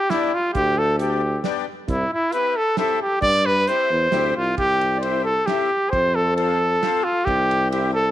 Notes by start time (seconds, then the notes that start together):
Already playing: G4
0.10 B3 D4 E4 G4, snare, closed hi-hat
0.34 F4
0.53 D2 G4, kick, closed hi-hat
0.78 A4
0.99 B3 D4 G4, closed hi-hat
1.44 B3 D4 G4, snare, closed hi-hat
1.88 C2 E4, kick, closed hi-hat
2.13 E4
2.32 C4 E4 G4 B4, closed hi-hat
2.56 A4
2.77 C4 E4 G4 A4, snare, closed hi-hat
3.02 G4
3.22 G2 D5, kick, closed hi-hat
3.46 B4
3.67 C4 E4 G4 C5, closed hi-hat
3.90 E2
4.12 D2 C4 E4 G4, snare, closed hi-hat
4.36 C2 F4
4.58 C2 G4, kick, ride
4.81 ride
4.97 C5 D5
5.03 C4 E4 G4, ride
5.24 A4
5.46 C4 E4 G4, snare, ride
5.90 F2 C5, kick, ride
6.15 A4
6.36 C4 F4 A4, ride
6.82 C4 F4 A4, snare, ride
7.04 F4
7.25 C2 G4, kick, ride
7.51 ride
7.70 C4 E4 G4, ride
7.94 A4